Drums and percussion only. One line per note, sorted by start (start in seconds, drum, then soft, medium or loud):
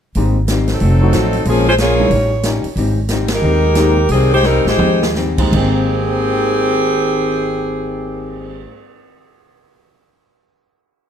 0.15 open hi-hat soft
0.48 snare medium
0.48 closed hi-hat medium
0.67 snare soft
0.67 open hi-hat soft
0.80 open hi-hat soft
1.13 snare medium
1.13 closed hi-hat medium
1.33 open hi-hat soft
1.45 open hi-hat soft
1.78 snare medium
1.78 closed hi-hat medium
2.11 open hi-hat soft
2.43 snare medium
2.43 closed hi-hat medium
2.64 open hi-hat soft
2.77 open hi-hat soft
3.08 snare medium
3.08 closed hi-hat medium
3.28 snare medium
3.28 ride medium
3.75 snare medium
3.75 closed hi-hat medium
4.09 open hi-hat medium
4.43 snare soft
4.67 snare medium
4.79 high tom medium
5.03 snare medium
5.15 snare medium
5.38 kick medium
5.38 crash medium
5.53 kick medium
5.53 crash medium
5.76 cymbal swell soft